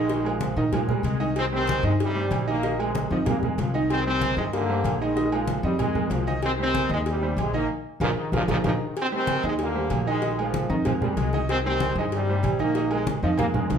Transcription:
Already playing: A#1 D#3
0.00 G#3
0.10 D#3 D#4 D#5, cowbell, high conga
0.25 G#2 F3 G#3 G#4 A#4, high conga, low agogo
0.41 cowbell, high conga
0.56 A#2 D#3 D#4 D#5, high conga
0.72 F3 G#3 G#4 A#4, cowbell, high conga, low conga, low agogo
0.89 G3 G#3 G#4 A#4, high conga, low conga
1.03 C2 G#3, cowbell, high conga, low agogo
1.20 D#3 D#4 D#5, low agogo
1.36 D#3 C4, cowbell, low agogo
1.53 D#3 G3 C4 G4 C5, high conga
1.67 cowbell, high conga, low agogo
1.83 G2 C3 D#3 D#4 D#5
1.87 G#3
2.00 C3 G3, cowbell, high conga, low agogo
2.15 G3 G4 C5, high conga
2.30 A#1, cowbell, high conga, low timbale, low agogo
2.47 D#3 A#3 D#4 D#5, low agogo
2.63 D#3 D#4 D#5, cowbell, high conga
2.79 C3 G#3 G#4 A#4, high conga, low agogo
2.95 cowbell, high conga
3.10 F2 D#3 F3 D#4 D#5, high conga
3.25 G#3 A#3 G#4 A#4, cowbell, high conga, low conga, low agogo
3.38 G3 G#3
3.43 G#3 G#4 A#4, high conga, low conga
3.58 C2 F3, cowbell, high conga, low timbale, low agogo
3.74 D#3 D#4 D#5, low agogo
3.90 D#3 C4, cowbell, high conga, low agogo
4.06 D#3 G3 C4 G4 C5, high conga
4.21 cowbell, high conga, low agogo
4.37 G2 C3 D#3 G#3 D#4 D#5
4.52 D3 A#3, cowbell, high conga, low agogo
4.70 G3 G4 C5, high conga
4.84 A#1, cowbell, high conga, low agogo
5.00 D#3 G#3 D#4 D#5, low agogo
5.16 D#3 D#4 D#5, cowbell, high conga
5.32 G#2 F3 G#3 G#4 A#4, high conga, low agogo
5.48 cowbell, high conga
5.63 F2 D#3 G3 D#4 D#5, high conga
5.79 G#3 G#4 A#4, cowbell, high conga, low conga, low agogo
5.95 G#3 G#4 A#4, high conga, low conga
6.10 C2 F3, cowbell, high conga, low timbale, low agogo
6.27 D#3 D#4 D#5, high conga, low agogo
6.43 D#3 C4, cowbell, high conga, low agogo
6.58 D#3 G3 C4 G4 C5, high conga
6.74 cowbell, high conga, low agogo
6.90 D#2 C3 D#3 G#3 D#4 D#5, high conga
7.06 C3, cowbell, high conga, low agogo
7.10 G3
7.22 G3 G4 C5, high conga
7.37 A#1, cowbell, high conga, low agogo
7.41 C3 G#3
7.54 D#3 A#3 D#4 D#5, high conga, low agogo
8.00 A#1 A#2 D#3 F3 F4 G#4 A#4, cowbell, high conga, high timbale
8.17 D#3
8.32 A#1 A#2 D#3 F3 F4 G#4 A#4, cowbell, high conga, high timbale
8.48 A#1 A#2 D#3 F3 F4 G#4 A#4, cowbell, high conga, high timbale
8.64 A#1 A#2 D#3 F3 F4 G#4 A#4, cowbell, high conga, high timbale
8.96 D#3, cowbell, high conga, low agogo
9.01 C4
9.12 D#3 G3 C4 G4 C5, high conga
9.27 cowbell, high conga, low agogo
9.43 D#2 C3 D#3 G#3 D#4 D#5
9.59 D3 A#3, cowbell, high conga, low agogo
9.74 G3 G4 C5, high conga
9.90 A#1, cowbell, high conga, low timbale, low agogo
10.06 D#3 G#3 D#4 D#5, low agogo
10.22 D#3 D#4 D#5, cowbell, high conga
10.38 F3 G#3 G#4 A#4, high conga, low agogo
10.42 G#2
10.54 cowbell, high conga
10.69 F2 D#3 D#4 D#5
10.85 F3 G#3 G#4 A#4, cowbell, high conga, low conga, low agogo
11.01 G3 G#3 G#4 A#4, high conga, low conga
11.17 C2 G#3, cowbell, high conga, low timbale, low agogo
11.33 D#3 D#4 D#5, high conga, low agogo
11.49 D#3 C4, cowbell, high conga, low agogo
11.65 D#3 G3 C4 G4 C5, high conga
11.80 cowbell, high conga, low agogo
11.95 G2 C3 D#3 G#3 D#4 D#5, high conga
12.12 C3 G3, cowbell, high conga, low agogo
12.28 G3 G4 C5, high conga
12.43 A#1, cowbell, high conga, low agogo
12.59 D#3 A#3 D#4 D#5, high conga, low agogo
12.75 D#3 D#4 D#5, cowbell, high conga
12.91 C3 G#3 G#4 A#4, high conga, low agogo
13.07 cowbell, high conga
13.22 F2 D#3 F3 D#4 D#5, high conga
13.38 G#3 A#3 G#4 A#4, cowbell, high conga, low conga, low agogo
13.54 G#3 G#4 A#4, high conga, low conga, high timbale
13.69 C2 F3, cowbell, high conga, high timbale, low agogo

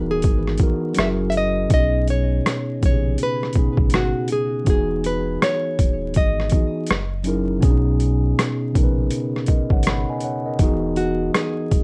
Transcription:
Already playing: D#1 E3 B3 D#4 F#4 G#4 A#4
0.11 G#4
0.22 G#1, kick, closed hi-hat
0.47 cross-stick
0.58 E3 B3 D#4, kick, closed hi-hat
0.62 F#4 A#4
0.94 F#1 F#3 C#4 E4 F#4, closed hi-hat
0.98 G#4 A#4 E5, cross-stick
1.30 E5, closed hi-hat
1.37 D#5
1.68 B1 B2 B3 C#4 D#4, kick, closed hi-hat
1.73 F#4 D#5
1.80 G#4
2.08 C#5, closed hi-hat
2.46 cross-stick, closed hi-hat
2.80 C#3 B3 C#4, kick, closed hi-hat
2.84 A#1 D#4 G4 C#5
2.91 G#4
3.18 closed hi-hat
3.23 B4
3.43 cross-stick
3.53 B2 B3 C#4, kick, closed hi-hat
3.57 D#4 G#4
3.77 G#1, kick
3.90 closed hi-hat
3.94 F#4, cross-stick
4.28 closed hi-hat
4.32 G#4
4.64 E1 E3 B3 D#4 F#4, kick, closed hi-hat
4.69 G#4
5.04 B4, closed hi-hat
5.42 C#5, cross-stick, closed hi-hat
5.79 D#1, kick, closed hi-hat
6.14 G#1 D#5, kick, closed hi-hat
6.40 cross-stick
6.49 E3 B3, kick, closed hi-hat
6.54 D#4 F#4 G#4
6.86 F#1, closed hi-hat
6.91 cross-stick
7.23 F#3 C#4 D#4 E4 G#4, closed hi-hat
7.28 A#4
7.60 B2 B3 C#4 D4, kick, closed hi-hat
7.64 B1 G#4
7.70 D#4
8.00 closed hi-hat
8.39 cross-stick, closed hi-hat
8.72 A#1 C#3 B3 C#4 D#4, kick, closed hi-hat
8.77 A#4
8.84 B4
9.11 closed hi-hat
9.36 cross-stick
9.46 A#4 D#5, kick, closed hi-hat
9.70 G#1 C#5 F#5, kick
9.83 B5, closed hi-hat
9.87 F#5, cross-stick
10.10 D#5 G#5
10.20 F#5, closed hi-hat
10.24 C#5
10.46 A#4 D#5
10.59 E1 E3 B3 D#4, kick, closed hi-hat
10.63 F#4 G#4
10.96 F#4, closed hi-hat
11.34 G#4, cross-stick, closed hi-hat
11.71 D#1, kick, closed hi-hat

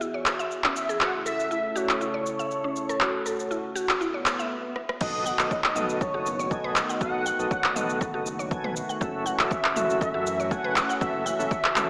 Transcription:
Already playing: E3 B3 F#4 G#4 E5
0.01 E4, shaker
0.14 C#5
0.26 clap, shaker
0.39 E5, shaker
0.51 shaker
0.64 C#4, clap
0.76 E5, shaker
0.89 G#4, shaker
1.01 C#3 A3 E4 F#4 A4 F#5, clap, shaker
1.26 A4 E5, shaker
1.40 shaker
1.51 E4, shaker
1.76 F#4 C#5, shaker
1.89 clap, shaker
2.01 E4, shaker
2.14 C#5
2.26 shaker
2.39 E5, shaker
2.51 shaker
2.64 C#4
2.76 shaker
2.89 A4, shaker
3.01 F#4, clap, shaker
3.26 A4, shaker
3.40 shaker
3.51 E4, shaker
3.75 F#4, shaker
3.89 clap, shaker
4.01 E4, swell, shaker
4.14 C#5
4.26 clap, shaker
4.39 E5, shaker
4.76 cross-stick
4.89 cross-stick
5.01 B1 D#3 A3 B3 F#4 A4 D#5, kick, crash, impact, shaker
5.26 F#5, shaker
5.39 B1 B3 F#4 A4 D#5, clap, shaker
5.51 C#5 D#5, kick, shaker
5.64 clap
5.75 B1 B3 F#4 A4 D#5, mid tom, shaker
5.89 shaker
6.01 A4 C#5, kick, shaker
6.14 F#1 B3 F#4 A4 D#5
6.26 shaker
6.39 C#5, shaker
6.51 B1 B3 F#4 A4 D#5 G#5, kick, shaker
6.64 B4
6.76 clap, shaker
6.89 F#5, shaker
7.01 B1 B3 F#4 A4 D#5 F#5, kick, shaker
7.26 F#5, shaker
7.39 B1 B3 F#4 A4 D#5, shaker
7.51 C#5 F#5, kick, shaker
7.64 clap
7.75 B1 B3 F#4 A4 D#5, mid tom, shaker
7.90 shaker
8.01 A4, kick, shaker
8.14 F#1 B3 F#4 A4 D#5
8.26 shaker
8.39 C#5, shaker
8.51 B1 B3 F#4 A4 G#5, kick, shaker
8.64 B4, mid tom
8.76 shaker
8.89 F#5, shaker
9.01 F#1 E3 C#4 F#4 A4 E5, kick, shaker
9.26 F#5, shaker
9.39 F#1 C#4 F#4 A4 E5, clap, shaker
9.51 C#5 E5, kick, shaker
9.64 clap
9.76 F#1 C#4 F#4 A4 E5, mid tom, shaker
9.90 shaker
10.01 A4 E5, kick, shaker
10.14 F#2 C#4 F#4 A4 E5
10.27 shaker
10.40 C#5, shaker
10.51 F#1 C#4 F#4 A4 F#5 G#5, kick, shaker
10.64 B4
10.76 clap, shaker
10.89 F#5, shaker
11.01 F#1 C#4 F#4 A4 E5, kick, shaker
11.26 F#5, shaker
11.39 F#1 C#4 F#4 A4 E5, shaker
11.51 C#5, kick, shaker
11.64 clap
11.76 F#1 C#4 F#4 A4 E5, clap, mid tom, shaker

